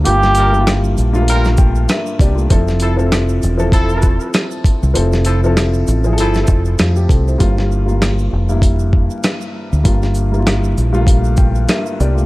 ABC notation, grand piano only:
X:1
M:4/4
L:1/16
Q:"Swing 16ths" 1/4=98
K:Gdor
V:1 name="Grand piano"
z8 z2 g2 [DBe]2 [B,Gd] [A,F]- | [A,F] z12 z3 | z12 [A,F] G [CA] [Ec]- | [Ec] z12 z3 |
z8 z2 g2 [DBe]2 [B,Gd] [A,F] |]
V:2 name="Grand piano"
[G,,G,B,F]3 [G,,G,B,EF]4 [G,,G,A,B,F]6- [G,,G,A,B,F] z2 | [F,CEA]3 [F,CEA]4 [F,CEA]6- [F,CEA] z2 | [F,CEA]3 [F,CEA]4 [F,CE_A=A]6- [F,CE_A=A] z2 | [G,,G,B,F]3 [G,,G,B,F]4 [G,,G,B,E]6- [G,,G,B,E] z2 |
[G,,G,B,F]3 [G,,G,B,EF]4 [G,,G,A,B,F]6- [G,,G,A,B,F] z2 |]